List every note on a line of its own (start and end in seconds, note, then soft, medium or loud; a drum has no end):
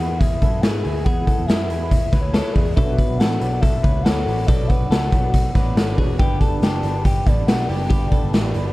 0.00 0.35 E2 medium
0.00 0.11 G#3 medium
0.00 0.09 B3 medium
0.00 2.73 E4 medium
0.00 0.08 E4 medium
0.00 0.18 G#4 medium
0.00 2.73 G#4 medium
0.00 2.74 B4 medium
0.00 0.20 F#5 medium
0.10 0.42 G#3 soft
0.10 0.42 B3 soft
0.10 0.42 E4 medium
0.19 0.42 G#4 medium
0.19 0.63 E5 loud
0.19 kick medium
0.19 closed hi-hat medium
0.42 0.60 F#2 medium
0.42 0.61 E3 medium
0.42 0.62 G#3 medium
0.42 0.63 B3 medium
0.42 0.64 E4 medium
0.42 0.63 A4 medium
0.42 kick medium
0.42 closed hi-hat medium
0.61 0.82 G#2 medium
0.61 0.83 E3 medium
0.61 0.84 G#3 medium
0.61 0.84 B3 medium
0.61 0.85 E4 medium
0.61 1.04 G#4 medium
0.61 0.82 G#5 loud
0.61 snare loud
0.61 closed hi-hat loud
0.83 1.03 D2 medium
0.83 1.04 E3 medium
0.83 1.04 G#3 medium
0.83 1.05 B3 medium
0.83 1.06 E4 medium
0.83 1.06 G#5 medium
0.83 open hi-hat medium
1.04 1.24 E2 loud
1.04 1.68 E3 medium
1.04 1.69 G#3 medium
1.04 1.71 B3 medium
1.04 1.70 E4 medium
1.04 1.27 G#4 loud
1.04 1.47 F#5 loud
1.04 kick loud
1.04 closed hi-hat medium
1.27 1.48 A4 medium
1.27 kick medium
1.27 closed hi-hat medium
1.38 1.47 E2 medium
1.46 1.70 F#2 medium
1.46 2.09 G#4 medium
1.46 1.88 E5 medium
1.46 snare loud
1.46 closed hi-hat medium
1.69 2.07 E2 medium
1.69 1.81 E3 medium
1.69 1.81 G#3 medium
1.69 1.81 B3 medium
1.69 1.79 E4 medium
1.69 closed hi-hat medium
1.80 2.11 G#3 soft
1.80 2.12 B3 medium
1.80 2.13 E4 medium
1.89 2.20 E5 loud
1.89 kick medium
1.89 closed hi-hat loud
2.11 2.40 D2 medium
2.11 2.32 E3 medium
2.11 2.33 G#3 medium
2.11 2.34 B3 medium
2.11 2.34 E4 medium
2.11 2.33 B4 medium
2.11 kick loud
2.11 snare soft
2.11 closed hi-hat medium
2.21 2.30 C#5 medium
2.31 2.54 E3 medium
2.31 2.55 G#3 medium
2.31 2.55 B3 medium
2.31 2.55 A4 medium
2.31 2.54 C#5 medium
2.31 snare loud
2.31 closed hi-hat loud
2.35 2.56 E4 medium
2.52 2.74 E2 loud
2.52 2.76 E3 medium
2.52 2.76 G#3 medium
2.52 2.76 B3 medium
2.52 2.76 G#4 medium
2.52 2.76 D5 medium
2.52 kick medium
2.52 open hi-hat medium
2.57 2.78 E4 medium
2.74 2.96 B1 loud
2.74 3.39 B2 medium
2.74 3.39 F#3 medium
2.74 3.41 B3 medium
2.74 5.94 D4 medium
2.74 3.42 D4 medium
2.74 5.94 F#4 medium
2.74 2.98 A4 medium
2.74 5.95 B4 medium
2.74 3.20 E5 loud
2.74 kick loud
2.74 closed hi-hat medium
2.98 3.20 B4 medium
2.98 kick medium
2.98 closed hi-hat medium
3.09 3.18 B1 medium
3.18 3.38 A1 medium
3.18 3.60 A4 medium
3.18 3.62 F#5 medium
3.18 snare loud
3.18 closed hi-hat medium
3.40 3.78 B1 medium
3.40 3.51 B2 medium
3.40 3.52 F#3 medium
3.40 3.51 B3 medium
3.40 3.50 D4 medium
3.40 closed hi-hat medium
3.51 3.83 F#3 soft
3.51 3.84 B3 soft
3.51 3.84 D4 medium
3.61 3.83 A4 medium
3.61 4.04 E5 loud
3.61 kick medium
3.61 closed hi-hat loud
3.83 4.02 C#2 medium
3.83 4.03 B2 medium
3.83 4.04 F#3 medium
3.83 4.05 B3 medium
3.83 4.05 D4 medium
3.83 4.05 B4 medium
3.83 kick loud
3.83 closed hi-hat medium
4.02 4.24 D2 medium
4.02 4.25 B2 medium
4.02 4.26 F#3 medium
4.02 4.27 B3 medium
4.02 4.46 A4 medium
4.02 4.24 F#5 medium
4.02 snare loud
4.02 closed hi-hat loud
4.07 4.28 D4 medium
4.25 4.45 A1 medium
4.25 4.47 B2 medium
4.25 4.47 F#3 medium
4.25 4.48 B3 medium
4.25 4.48 F#5 loud
4.25 open hi-hat medium
4.29 4.49 D4 medium
4.46 4.67 B1 loud
4.46 5.10 B2 medium
4.46 5.12 F#3 medium
4.46 5.13 B3 medium
4.46 5.14 D4 medium
4.46 4.69 A4 medium
4.46 4.68 D5 medium
4.46 kick loud
4.46 closed hi-hat medium
4.67 4.91 B4 medium
4.67 5.97 F#5 loud
4.67 kick medium
4.67 closed hi-hat medium
4.79 4.89 B1 medium
4.90 5.09 C#2 medium
4.90 5.51 A4 medium
4.90 snare loud
4.90 closed hi-hat medium
5.12 5.49 B1 medium
5.12 5.23 B2 medium
5.12 5.23 F#3 medium
5.12 5.23 B3 medium
5.12 5.22 D4 medium
5.12 kick medium
5.12 closed hi-hat medium
5.23 5.55 F#3 soft
5.23 5.56 B3 medium
5.23 5.55 D4 medium
5.34 kick medium
5.34 closed hi-hat loud
5.55 5.74 A1 medium
5.55 5.74 B2 medium
5.55 5.76 F#3 medium
5.55 5.76 B3 medium
5.55 5.77 D4 medium
5.55 5.77 B4 medium
5.55 kick medium
5.55 snare soft
5.55 closed hi-hat medium
5.76 5.95 G#1 medium
5.76 5.96 B2 medium
5.76 5.97 F#3 medium
5.76 5.98 B3 medium
5.76 5.98 D4 medium
5.76 5.98 A4 medium
5.76 snare loud
5.76 closed hi-hat medium
5.97 6.16 E1 medium
5.97 6.19 B2 medium
5.97 6.20 F#3 medium
5.97 6.19 B3 medium
5.97 6.17 D4 medium
5.97 6.20 D4 medium
5.97 6.20 F#4 medium
5.97 6.19 G#4 medium
5.97 6.18 B4 medium
5.97 kick medium
5.97 open hi-hat medium
6.18 6.38 G1 loud
6.18 6.84 G2 medium
6.18 6.83 D3 medium
6.18 6.84 G3 medium
6.18 6.84 B3 medium
6.18 8.73 D4 medium
6.18 6.85 D4 medium
6.18 8.73 G4 medium
6.18 6.41 G4 medium
6.18 8.73 B4 medium
6.18 6.41 G5 loud
6.18 kick loud
6.18 closed hi-hat medium
6.39 6.62 A4 medium
6.39 6.61 A5 loud
6.39 kick medium
6.39 closed hi-hat medium
6.51 6.61 G1 medium
6.61 6.81 F#1 medium
6.61 7.03 G4 medium
6.61 7.05 A5 loud
6.61 snare loud
6.61 closed hi-hat medium
6.83 7.20 G1 medium
6.83 6.95 D3 medium
6.83 6.95 G3 medium
6.83 6.95 B3 medium
6.83 6.94 D4 medium
6.83 closed hi-hat medium
6.95 7.26 G3 soft
6.95 7.27 B3 medium
6.95 7.27 D4 medium
7.04 7.26 G4 medium
7.04 7.27 G5 loud
7.04 kick medium
7.04 closed hi-hat medium
7.26 7.45 A1 medium
7.26 7.47 D3 medium
7.26 7.48 G3 medium
7.26 7.48 B3 medium
7.26 7.49 D4 medium
7.26 7.48 A4 medium
7.26 7.46 D5 medium
7.26 kick loud
7.26 closed hi-hat medium
7.47 7.66 B1 medium
7.47 7.67 D3 medium
7.47 7.69 G3 medium
7.47 7.69 B3 medium
7.47 7.70 D4 medium
7.47 7.88 G4 medium
7.47 7.70 F#5 loud
7.47 snare loud
7.47 closed hi-hat loud
7.68 7.88 F#1 medium
7.68 7.90 D3 medium
7.68 7.91 G3 medium
7.68 7.91 B3 medium
7.68 7.91 D4 medium
7.68 8.54 G5 medium
7.68 open hi-hat medium
7.90 8.09 G1 medium
7.90 8.55 G2 medium
7.90 8.54 D3 medium
7.90 8.55 G3 medium
7.90 8.55 B3 medium
7.90 8.56 D4 medium
7.90 8.11 G4 medium
7.90 kick loud
7.90 closed hi-hat medium
8.11 8.33 A4 medium
8.11 kick medium
8.11 closed hi-hat medium
8.23 8.32 G1 medium
8.33 8.52 A1 loud
8.33 8.73 G4 medium
8.33 snare loud
8.33 closed hi-hat medium
8.54 8.73 G1 medium
8.54 8.66 D3 medium
8.54 8.66 G3 medium
8.54 8.66 B3 medium
8.54 8.65 D4 medium
8.54 closed hi-hat medium
8.66 8.73 G3 soft
8.66 8.73 B3 medium
8.66 8.73 D4 medium